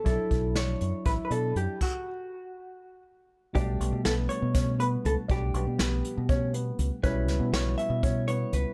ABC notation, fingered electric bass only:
X:1
M:7/8
L:1/16
Q:1/4=120
K:Glyd
V:1 name="Fingered electric bass" clef=bass
B,,, z B,,,4 F,, z A,,, z B,,2 F,, z | z12 z2 | B,,,2 B,,, B,, B,,,2 z B,,4- B,, C,, z | B,,,2 B,,, B,, B,,,2 z B,,4- B,, C,, z |
B,,,2 C,, B,, B,,,2 z B,,4- B,, C,, z |]